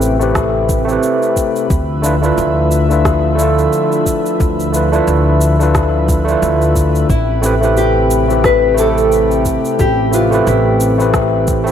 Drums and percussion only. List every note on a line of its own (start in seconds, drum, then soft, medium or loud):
0.02 cabasa medium
0.21 cabasa soft
0.35 kick loud
0.35 cross-stick medium
0.35 cabasa soft
0.69 kick loud
0.69 cabasa medium
0.89 cabasa soft
1.03 cabasa soft
1.22 cabasa soft
1.36 kick medium
1.36 cabasa medium
1.56 cabasa soft
1.70 kick loud
1.70 cabasa soft
2.04 cabasa medium
2.23 cabasa soft
2.38 cabasa soft
2.71 cabasa medium
2.91 cabasa soft
3.05 kick loud
3.05 cross-stick medium
3.05 cabasa soft
3.39 cabasa medium
3.58 cabasa soft
3.73 cabasa soft
3.92 cabasa soft
4.06 kick medium
4.06 cabasa medium
4.26 cabasa soft
4.40 kick loud
4.40 cabasa soft
4.60 cabasa soft
4.74 cabasa medium
4.93 cabasa soft
5.07 cabasa soft
5.41 cabasa medium
5.61 cabasa soft
5.75 kick loud
5.75 cross-stick medium
5.75 cabasa soft
6.09 kick loud
6.09 cabasa medium
6.28 cabasa soft
6.43 cabasa soft
6.62 cabasa soft
6.76 kick medium
6.76 cabasa medium
6.95 cabasa soft
7.10 kick loud
7.10 cabasa soft
7.43 cabasa medium
7.63 cabasa soft
7.77 cabasa soft
8.11 cabasa medium
8.30 cabasa soft
8.44 kick loud
8.44 cross-stick medium
8.44 cabasa soft
8.78 cabasa medium
8.98 cabasa soft
9.12 cabasa soft
9.31 cabasa soft
9.45 kick medium
9.45 cabasa medium
9.65 cabasa soft
9.79 kick loud
9.79 cabasa soft
10.13 cabasa medium
10.32 cabasa soft
10.47 cabasa soft
10.80 cabasa medium
11.00 cabasa soft
11.14 kick loud
11.14 cross-stick medium
11.14 cabasa soft
11.47 kick medium
11.47 cabasa medium
11.67 cabasa soft